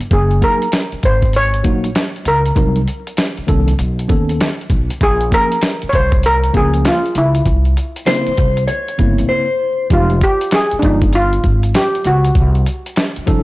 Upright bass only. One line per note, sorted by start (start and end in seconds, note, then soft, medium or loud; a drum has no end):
0.11 0.39 F#1 loud
0.93 muted upright bass stroke soft
1.04 1.61 G#1 medium
1.65 1.92 A#1 medium
2.26 2.54 C#2 medium
2.56 2.84 C2 loud
3.38 muted upright bass stroke soft
3.49 3.76 C2 medium
3.79 4.06 B1 medium
4.10 4.37 D#2 medium
4.70 4.88 B1 medium
5.01 5.29 A#1 loud
5.83 muted upright bass stroke soft
5.94 6.50 C2 medium
6.55 6.82 C#2 medium
7.15 7.43 C#2 medium
7.46 7.74 C2 loud
8.27 muted upright bass stroke soft
8.38 8.66 C2 medium
8.99 9.17 G1 medium
9.19 9.29 A#1 medium
9.91 10.18 F1 loud
10.73 muted upright bass stroke soft
10.83 11.40 G1 medium
11.44 11.72 G#1 medium
12.05 12.33 C#2 medium
12.35 12.63 C2 loud
13.17 muted upright bass stroke soft
13.28 13.43 C2 medium